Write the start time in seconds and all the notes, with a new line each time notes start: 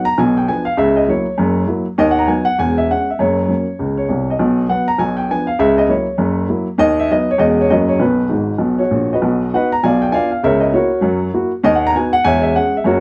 0.05 A#5
0.18 B1 B2 G#5
0.37 G5
0.48 F3 B3 D4 G#5
0.65 F5
0.77 C#2 C#3 E5
0.96 D#5
1.08 F#3 A#3 E4 C#5
1.38 F#1 F#2
1.67 F#3 A#3 E4
1.98 D#2 D#3 D#5
2.11 F#5
2.19 A#5
2.28 F#3 B3 D#4 G#5
2.45 F#5
2.59 E1 E2 G#5
2.78 E5
2.90 G#3 C#4 F#5
3.10 E5
3.19 F#1 F#2 C#5
3.48 F#3 A#3 C#4
3.79 C#2 C#3
3.97 C#5
4.09 C2 C3
4.30 D#5
4.39 B1 B2
4.69 F#3 B3 F#5
4.88 A#5
4.99 B1 B2 G#5
5.17 G5
5.30 F3 B3 D4 G#5
5.47 F5
5.59 C#2 C#3 E5
5.78 D#5
5.88 F#3 A#3 E4 C#5
6.18 F#1 F#2
6.49 F#3 A#3 E4
6.78 D#2 D#3 D#5
6.99 E5
7.11 F#3 B3 D#4 D#5
7.31 C#5
7.38 E1 E2 G#3 C#4 G#4 D#5
7.61 C#5
7.70 F#1 F#2 A#3 C#4 F#4 D#5
7.88 C#5
7.99 B1 B2 B4
8.29 G#1 G#2
8.58 B1 B2
8.79 F#4 C#5
8.91 A#1 A#2
9.13 F#4 B4 D#5
9.22 B1 B2
9.54 B3 D#4 F#4 B4 D#5 F#5
9.72 A#5
9.83 B1 B2 D5 F5 G#5
10.02 G5
10.12 B3 D4 F4 D5 F5 G#5
10.31 F5
10.43 C#2 C#3 A#4 C#5 E5
10.60 D#5
10.72 A#3 E4 F#4 A#4 C#5
11.01 F#2 F#3
11.34 A#3 E4 F#4
11.63 D#2 D#3 D#5
11.75 F#5
11.87 A#5
11.95 B3 D#4 F#4 G#5
12.13 F#5
12.24 E1 E2 C#5 E5 G#5
12.42 E5
12.55 G#3 C#4 G#4 F#5
12.77 E5
12.84 F#1 F#2 F#4 A#4 C#5